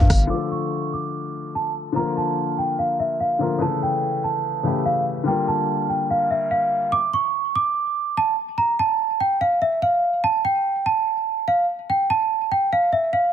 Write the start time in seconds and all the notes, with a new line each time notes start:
Already playing: D3 G3 A#3 F4 A#4 F5
0.10 G1, kick, cross-stick, open hi-hat
0.27 D3 F3 A3 D6
0.33 F4 A4
0.51 C#6
0.93 D6
1.55 A5
1.92 D3 F3 A#3 A#5
1.98 F4 A#4
2.17 A5
2.58 G5
2.79 F5
3.00 E5
3.20 F5
3.39 D3 F3 A#3 F4 A#4
3.58 C#3 E3 A3 A5
3.64 E4 A4
3.83 G5
4.24 A5
4.63 C#3 E3 A3 E4 G4
4.86 F5
5.24 D3 G3 A#3 G5
5.29 F4 A#4
5.48 A5
5.90 G5
6.11 F5
6.31 E5
6.51 F5
6.92 D6
7.13 C#6
7.56 D6
8.17 A5
8.58 A#5
8.79 A5
9.20 G5
9.41 F5
9.62 E5
9.82 F5
10.24 A5
10.45 G5
10.86 A5
11.48 F5
11.90 G5
12.10 A5
12.52 G5
12.73 F5
12.93 E5
13.13 F5